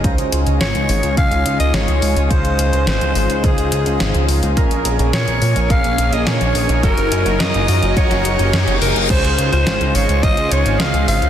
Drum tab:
CC |----------------|----------------|----------------|----------------|
HH |xxxxxxoxxxxxxxox|xxxxxxoxxxxxxxox|xxxxxxoxxxxxxxox|xxxxxxoxxxxxxxox|
SD |----o-------o---|----o-------o---|----o-------o---|----o----o--o---|
BD |o-------o-------|o-------o-------|o-------o-------|o-------o-------|

CC |x---------------|
HH |xxxxxxoxxxxxxxox|
SD |----o-------o---|
BD |o-------o-------|